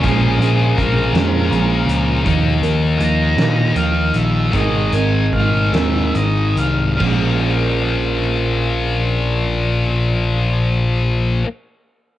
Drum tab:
CC |------|------|------|x-----|
HH |xxxxxx|xxxxxx|xxxxxx|------|
SD |---o--|---o--|---o--|------|
BD |o-o---|o-----|o-o---|o-----|

CC |------|
HH |------|
SD |------|
BD |------|